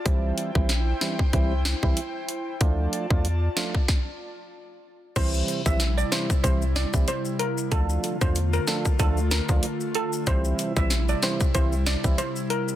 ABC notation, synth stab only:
X:1
M:4/4
L:1/16
Q:"Swing 16ths" 1/4=94
K:Cmix
V:1 name="Synth stab"
[E,G,CE]3 [E,G,CE] z2 [E,G,CE] z [E,G,CE] z2 [E,G,CE] z4 | [F,A,DF]3 [F,A,DF] z2 [F,A,DF] z8 z | [E,G,CE]3 [E,G,CE] z2 [E,G,CE] z [E,G,CE] z2 [E,G,CE] z4 | [F,A,DF]3 [F,A,DF] z2 [F,A,DF] z [F,A,DF] z2 [F,A,DF] z4 |
[E,G,CE]3 [E,G,CE] z2 [E,G,CE] z [E,G,CE] z2 [E,G,CE] z4 |]